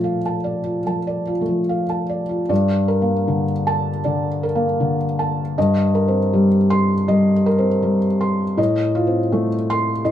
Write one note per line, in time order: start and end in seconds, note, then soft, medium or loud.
0.00 0.82 A#2 soft
0.00 0.17 F3 soft
0.00 0.21 A3 soft
0.00 0.64 F4 soft
0.00 0.44 D5 soft
0.00 0.37 F5 soft
0.00 0.26 A5 medium
0.26 0.58 A5 soft
0.44 0.78 D5 soft
0.64 0.98 F4 soft
0.86 1.31 F3 soft
0.86 1.20 A5 soft
1.07 1.40 D5 soft
1.27 1.61 F4 soft
1.41 1.85 A3 soft
1.49 1.82 F3 soft
1.69 2.02 F5 soft
1.89 2.22 A5 soft
2.09 2.42 D5 soft
2.29 2.50 F4 soft
2.49 3.99 G2 medium
2.49 3.12 D5 medium
2.88 3.50 A#4 soft
3.02 3.43 A#3 soft
3.28 3.89 D3 soft
3.67 4.27 A5 medium
4.04 4.45 D3 soft
4.04 4.65 D5 soft
4.43 5.04 A#4 medium
4.55 4.96 A#3 soft
4.80 5.42 D3 medium
5.19 5.57 A5 medium
5.58 7.05 G2 medium
5.58 6.18 D#5 medium
5.95 6.55 A#4 medium
6.08 6.48 C4 soft
6.33 6.93 G3 medium
6.70 7.31 C6 medium
7.08 7.48 G3 medium
7.08 7.68 D#5 medium
7.46 8.06 A#4 medium
7.58 7.98 C4 medium
7.83 8.43 G3 medium
8.21 8.58 C6 medium
8.57 10.02 A2 medium
8.57 9.18 D#5 medium
8.95 9.54 F4 medium
9.07 9.47 C4 soft
9.32 9.92 A3 medium
9.70 10.11 C6 medium
10.05 10.11 A2 medium
10.05 10.11 D#5 medium